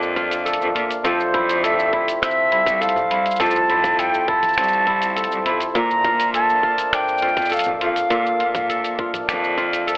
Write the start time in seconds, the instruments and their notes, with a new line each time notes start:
Already playing: cello F2, kora A#2 D4 F4 A4, accordion A#2 F3 A3 D4
0.02 shaker
0.16 kora F4, kick, closed hi-hat
0.31 closed hi-hat, shaker
0.45 kora A4, closed hi-hat, shaker
0.53 closed hi-hat
0.60 cello F2, shaker
0.75 cello A#2, kora F4, closed hi-hat
0.91 closed hi-hat, shaker
1.04 cello F2, accordion C3, kora F3 A4, flute C5, kick, closed hi-hat, shaker
1.20 shaker
1.34 cello F2, kora E4, kick, closed hi-hat
1.49 closed hi-hat, shaker
1.63 kora A4, flute E5, closed hi-hat, shaker
1.79 shaker
1.88 accordion C5
1.93 kora E4, kick
2.08 closed hi-hat, shaker
2.22 kora C4, flute E5, finger snap, closed hi-hat, shaker
2.31 shaker
2.51 cello C2, kora E4, closed hi-hat
2.66 cello C2, kick, closed hi-hat, shaker
2.81 kora A4, flute F5, closed hi-hat, shaker
2.89 closed hi-hat
2.96 cello C2, low conga, shaker
3.10 cello C2, kora E4, closed hi-hat
3.26 closed hi-hat, shaker
3.31 shaker
3.36 cello F2, kora F3, shaker
3.40 kora A4, flute A5, kick, closed hi-hat, shaker
3.45 shaker
3.50 shaker
3.55 shaker
3.69 cello F2, kora E4, closed hi-hat
3.84 kick, closed hi-hat, low conga, shaker
3.99 kora A4, flute G5, closed hi-hat, shaker
4.14 shaker
4.28 kora E4, flute A5, kick
4.43 closed hi-hat, low conga, shaker
4.48 shaker
4.53 cello C2, shaker
4.58 kora C4, finger snap, closed hi-hat, shaker
4.63 shaker
4.68 shaker
4.72 shaker
4.87 kora E4, kick, closed hi-hat
5.02 closed hi-hat, shaker
5.16 kora A4, closed hi-hat, shaker
5.24 closed hi-hat
5.31 cello C2, shaker
5.45 cello F2, kora E4, closed hi-hat
5.60 closed hi-hat, shaker
5.75 cello A#2, kora A#2, accordion A#2, flute A#5, kick, closed hi-hat, shaker
5.90 shaker
5.97 accordion D4
6.04 cello A#2, kora F4, kick, closed hi-hat
6.20 closed hi-hat, shaker
6.34 kora A4, flute A5, closed hi-hat, shaker
6.49 shaker
6.63 kora F4, kick
6.78 closed hi-hat, shaker
6.93 kora D4, flute G5, finger snap, closed hi-hat, shaker
7.08 shaker
7.18 shaker
7.22 cello F2, kora F4, closed hi-hat
7.28 shaker
7.37 cello F2, kick, closed hi-hat, shaker
7.41 shaker
7.45 shaker
7.49 kora A4, closed hi-hat, shaker
7.52 flute F5, shaker
7.56 closed hi-hat, shaker
7.60 shaker
7.63 cello F2, low conga, shaker
7.67 shaker
7.80 cello F2, kora F4, flute F5, closed hi-hat
7.96 closed hi-hat, shaker
8.10 cello A#2, kora A#2 A4, kick, closed hi-hat, shaker
8.26 shaker
8.39 cello A#2, kora F4, closed hi-hat
8.55 kick, closed hi-hat, low conga, shaker
8.69 kora A4, closed hi-hat, shaker
8.84 closed hi-hat, shaker
8.99 kora F4, kick
9.14 closed hi-hat, low conga, shaker
9.28 cello F2, kora D4, finger snap, closed hi-hat, shaker
9.44 shaker
9.58 kora F4, kick, closed hi-hat
9.73 closed hi-hat, shaker
9.87 kora A4, closed hi-hat, shaker